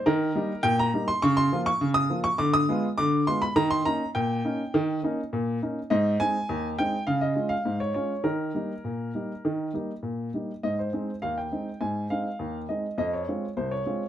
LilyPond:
<<
  \new Staff \with { instrumentName = "Upright piano" } { \time 2/4 \key ees \major \tempo 4 = 102 bes'4 g''16 bes''8 c'''16 | \key aes \major des'''16 c'''8 des'''8 ees'''8 des'''16 | d'''16 ees'''8. d'''8 c'''16 b''16 | bes''16 c'''16 bes''8 g''4~ |
g''8 r4. | ees''8 aes''4 g''8 | f''16 ees''8 f''8 des''16 des''8 | bes'2~ |
bes'4 r4 | ees''16 c''8. f''16 g''8. | aes''8 f''4 ees''8 | ees''16 des''8. c''16 des''8. | }
  \new Staff \with { instrumentName = "Upright piano" } { \time 2/4 \key ees \major ees8 <g bes ees'>8 bes,8 <g bes ees'>8 | \key aes \major des8 <f bes f'>8 des8 <f bes f'>8 | d8 <aes b f'>8 d8 <aes b f'>8 | ees8 <bes des' ees'>8 bes,8 <bes des' ees'>8 |
ees8 <bes des' ees'>8 bes,8 <bes des' ees'>8 | aes,8 <aes c' ees'>8 ees,8 <aes c' ees'>8 | des8 <aes des' f'>8 aes,8 <aes des' f'>8 | ees8 <g bes ees'>8 bes,8 <g bes ees'>8 |
ees8 <g bes ees'>8 bes,8 <g bes ees'>8 | aes,8 <aes c' ees'>8 ees,8 <aes c' ees'>8 | aes,8 <aes c' ees'>8 ees,8 <aes c' ees'>8 | f,8 <aes c' f'>8 c,8 <aes c' f'>8 | }
>>